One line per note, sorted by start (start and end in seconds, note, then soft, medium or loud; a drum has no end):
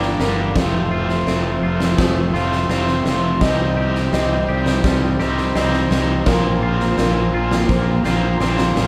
0.00 0.19 G1 medium
0.00 0.53 G2 medium
0.00 0.53 D3 medium
0.00 0.54 G3 medium
0.00 0.54 A#3 medium
0.00 0.55 A#3 medium
0.00 0.54 D4 medium
0.00 0.55 D4 medium
0.00 0.53 G4 medium
0.00 0.54 G4 medium
0.00 0.55 G4 medium
0.00 0.53 A#4 medium
0.00 0.20 D5 medium
0.00 0.53 D5 medium
0.00 0.53 A#5 medium
0.00 snare soft
0.19 0.56 G1 medium
0.19 0.55 G3 medium
0.19 0.55 A#4 medium
0.19 snare medium
0.55 1.25 F1 medium
0.55 2.32 F2 medium
0.55 2.34 F2 medium
0.55 2.32 C3 medium
0.55 2.32 F3 medium
0.55 2.33 A3 medium
0.55 2.34 C4 medium
0.55 2.32 F4 medium
0.55 1.26 A4 medium
0.55 3.39 A4 medium
0.55 3.39 C5 medium
0.55 3.39 F5 medium
0.55 8.87 C6 medium
0.55 kick medium
0.55 snare medium
0.91 1.62 F4 medium
1.09 snare soft
1.27 1.61 F1 medium
1.27 2.70 C4 medium
1.27 1.99 A4 medium
1.27 snare medium
1.62 1.97 F1 medium
1.62 2.33 F4 medium
1.80 snare medium
1.98 2.33 F1 medium
1.98 3.42 A3 medium
1.98 2.69 C5 medium
1.98 kick medium
1.98 snare medium
2.34 2.68 F1 medium
2.34 2.68 F2 medium
2.34 2.69 C3 medium
2.34 2.68 F3 medium
2.34 2.68 A3 medium
2.34 2.71 C4 medium
2.34 2.68 F4 medium
2.34 3.41 F4 medium
2.34 snare soft
2.52 snare soft
2.69 3.04 F1 medium
2.69 3.39 F2 medium
2.69 3.39 C3 medium
2.69 3.40 F3 medium
2.69 3.40 A3 medium
2.69 4.12 C4 medium
2.69 3.43 C4 medium
2.69 3.40 F4 medium
2.69 3.04 C5 medium
2.69 snare medium
2.88 snare soft
3.05 3.40 F1 medium
3.05 3.41 F3 medium
3.05 3.41 C5 medium
3.05 snare medium
3.41 4.10 C2 medium
3.41 5.18 C3 medium
3.41 5.20 C3 medium
3.41 5.18 G3 medium
3.41 5.18 C4 medium
3.41 6.24 D#4 medium
3.41 5.19 D#4 medium
3.41 6.24 C5 medium
3.41 4.11 D#5 medium
3.41 6.24 G5 medium
3.41 kick medium
3.41 snare medium
3.77 4.47 G4 medium
3.95 snare soft
4.13 4.47 C2 medium
4.13 5.54 C4 medium
4.13 4.48 D#5 medium
4.13 snare medium
4.48 4.83 C2 medium
4.48 5.18 G4 medium
4.48 5.20 D5 medium
4.66 snare medium
4.84 5.18 C2 medium
4.84 6.27 G3 medium
4.84 kick medium
4.84 snare medium
5.20 5.54 C2 medium
5.20 5.55 C3 medium
5.20 5.54 G3 medium
5.20 5.54 C4 medium
5.20 5.53 D#4 medium
5.20 6.27 G4 medium
5.20 5.56 C5 medium
5.20 snare soft
5.38 snare soft
5.55 5.90 C2 medium
5.55 6.25 C3 medium
5.55 6.25 G3 medium
5.55 6.27 C4 medium
5.55 6.26 C4 medium
5.55 6.26 D#4 medium
5.55 5.91 D#5 medium
5.55 snare medium
5.73 snare soft
5.91 6.25 C2 medium
5.91 6.27 D#3 medium
5.91 6.27 C5 medium
5.91 snare medium
6.26 6.95 A#1 medium
6.26 8.03 A#2 medium
6.26 8.05 A#2 medium
6.26 8.03 F3 medium
6.26 8.03 A#3 medium
6.26 8.03 C4 medium
6.26 8.87 F4 medium
6.26 6.96 A#4 medium
6.26 8.87 C5 medium
6.26 8.87 A#5 medium
6.26 kick medium
6.26 snare medium
6.63 7.33 F4 medium
6.80 snare soft
6.98 7.32 A#1 medium
6.98 8.40 C4 medium
6.98 7.69 A#4 medium
6.98 snare medium
7.34 7.68 A#1 medium
7.34 8.04 F4 medium
7.51 snare medium
7.69 8.03 A#1 medium
7.69 8.87 A#3 medium
7.69 8.39 C5 medium
7.69 kick medium
7.69 snare soft
8.04 8.39 A#1 medium
8.04 8.39 A#2 medium
8.04 8.39 F3 medium
8.04 8.38 A#3 medium
8.04 8.38 C4 medium
8.04 8.87 F4 medium
8.04 snare medium
8.40 8.75 A#1 medium
8.40 8.87 A#2 medium
8.40 8.87 F3 medium
8.40 8.87 A#3 medium
8.40 8.87 C4 medium
8.40 8.74 C5 medium
8.40 snare medium
8.58 snare medium
8.75 8.87 A1 medium
8.75 8.87 F3 medium
8.75 8.87 C5 medium
8.75 snare medium